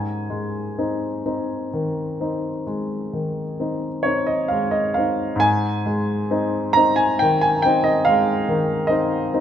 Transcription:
grand piano
Already playing: G#2 G#5
0.30 G#3
0.78 C4 D#4
1.26 C4 D#4
1.73 D#3
2.20 C4 D#4
2.67 G#3
3.13 D#3
3.60 C4 D#4
4.03 C4 D#4 C#5
4.27 D#5
4.48 G#3 F5
4.71 D#5
4.94 C4 F5
4.98 D#4
5.36 G#2
5.40 G#5
5.86 G#3
6.31 C4 D#4
6.73 C4 D#4 A#5
6.96 G#5
7.19 D#3 G5
7.41 G#5
7.62 C4 D#4 G5
7.84 D#5
8.05 G#3 F5
8.48 D#3
8.87 C4 D#4 D#5
9.34 C4 D#4

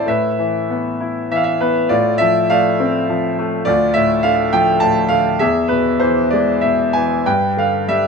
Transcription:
grand piano
0.06 A2 B4 E5
0.39 E3
0.70 B3
1.00 E4
1.31 E3 E5
1.36 F5
1.44 E5
1.61 B3 B4
1.89 A2 F4 D5
2.18 F3 E5
2.50 A3 D5 F5
2.80 C4
3.10 F3
3.39 A3
3.65 D2 F4 D5
3.94 A2 E5
4.23 D3 F5
4.53 F3 G5
4.80 A2 A5
5.09 D3 F5
5.39 E2 G#4 E5
5.68 B2 B4
6.00 E3 C5
6.31 G#3 D5
6.61 B2 E5
6.93 E3 G#5
7.26 G2 B4 G5
7.57 D3 F5
7.88 G3 E5

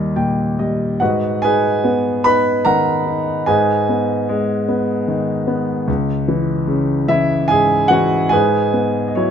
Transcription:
grand piano
Already playing: D#2 D#3 G3 D#4 G4 A#4 D#5
0.16 A#2 G5
0.59 G3 D#5
1.00 G#2 F#4 B4 D#5 F#5
1.42 D#4 G#4 B4 G#5
1.84 B3
2.24 D#4 B4 B5
2.65 D#3 A#4 F#5 A#5
3.06 D#4
3.46 G#2 G#4 B4 D#5 G#5
3.89 B3
4.29 G#3
4.68 B3
5.08 D#3
5.47 B3
5.88 C#2
6.28 E3
6.67 C#3
7.08 E3 E4 E5
7.48 G#2 G#4 G#5
7.88 E3 F#4 F#5
8.29 G#2 G#4 B4 D#5 G#5
8.73 B3
9.08 D#5
9.15 F#3 E4 C#5

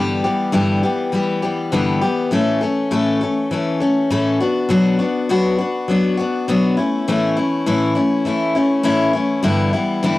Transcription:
steel-string acoustic guitar
Already playing: G2 D3 E3 G3 B3 G4
0.24 E3 G3 B3 G4
0.52 G2 D3 E3 G3 B3 G4
0.83 E3 G3 B3 G4
1.12 E3 G3 B3 G4
1.42 E3 G3 B3 G4
1.72 G2 D3 E3 G3 B3 G4
2.01 E3 G3 B3 G4
2.31 A2 E3 A3 C#4 A4
2.61 A3 C#4 A4
2.91 A2 E3 A3 C#4 A4
3.21 A3 C#4 A4
3.51 E3 A3 C#4 A4
3.80 A3 C#4 A4
4.10 A2 E3 A3 C#4 A4
4.40 B3 D4 F#4
4.69 B2 F#3 B3 D4 F#4
4.99 B3 D4 F#4
5.29 B2 F#3 B3 D4 F#4
5.58 B3 D4 F#4
5.88 F#3 B3 D4 F#4
6.17 B3 D4 F#4
6.48 B2 F#3 B3 D4 F#4
6.77 A3 C#4 E4
7.08 A2 E3 A3 C#4 E4
7.37 A3 C#4 E4
7.66 A2 E3 A3 C#4 E4
7.95 A3 C#4 E4
8.25 E3 A3 C#4 E4
8.55 A3 C#4 E4
8.83 A2 E3 A3 C#4 E4
9.13 A3 C#4 E4
9.43 G2 D3 E3 G3 B3 E4
9.73 E3 G3 B3 E4
10.03 G2 D3 E3 G3 B3 E4

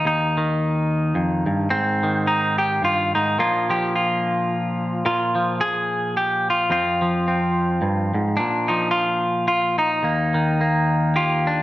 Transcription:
clean electric guitar
Already playing: D#3
0.05 D#2 D#4
0.38 D#3
1.15 F2
1.46 G2
1.70 G#2 C4
2.03 D#3
2.27 D#4
2.58 G4
2.82 G2 F4
3.15 G#2 D#4
3.39 A#2 F3 A#3 D4 F4
3.70 F3 G4
3.96 F4
5.06 A#2 F4
5.35 F3
5.61 G#4
6.17 G4
6.50 F4
6.70 F2 F3 C4 F4
7.02 F3
7.28 C4
7.82 G2
8.14 G#2
8.37 A#2 D4
8.68 F3 D#4
8.91 F4
9.48 F4
9.78 D#4
10.03 D#2 A#3
10.34 D#3
10.61 A#3
11.16 F4 G4
11.47 D4

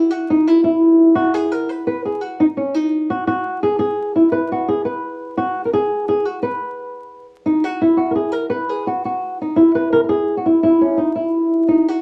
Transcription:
nylon-string guitar
Already playing: E4
0.11 F#4
0.30 D#4
0.47 E4
0.64 E4
1.15 F#4
1.34 G#4
1.52 A#4
1.69 B4
1.87 B4
2.05 G#4
2.21 F#4
2.40 D#4
2.57 C#4
2.74 D#4
3.10 F#4
3.27 F#4
3.63 G#4
3.79 G#4
4.16 E4
4.32 B4
4.52 F#4
4.68 G#4
4.85 B4
5.37 F#4
5.65 A#4
5.73 G#4
6.09 G#4
6.25 F#4
6.43 B4
7.46 D#4
7.64 F#4
7.82 E4
7.97 F#4
8.11 A#4
8.16 G#4
8.32 A#4
8.50 B4
8.69 G#4
8.87 F#4
9.05 F#4
9.42 D#4
9.56 E4
9.75 B4
9.93 A#4
10.04 A#4
10.09 G#4
10.37 F#4
10.46 E4
10.63 E4
10.81 C#4
10.97 D#4
11.15 E4
11.68 D#4
11.88 F#4

